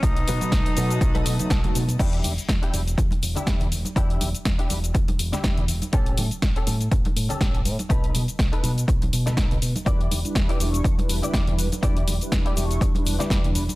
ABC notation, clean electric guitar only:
X:1
M:4/4
L:1/16
Q:"Swing 16ths" 1/4=122
K:Edor
V:1 name="Clean electric guitar"
z2 [B,^DFB]2 z2 [B,DFA]2 z [B,DFA] z2 [B,DFA]2 z2 | [DEG]2 z3 [DEG] z4 z [DEG]3 z2 | [DEG]2 z3 [DEG] z4 z [DEG]3 z2 | [CGA]2 z3 [CGA] z4 z [CGA]3 z2 |
[^DAB]2 z3 [DAB] z4 z [DAB]3 z2 | [EGd]2 z3 [EGd] z4 z [EGd]3 z2 | [EGd]2 z3 [EGd] z4 z [EGd]3 z2 |]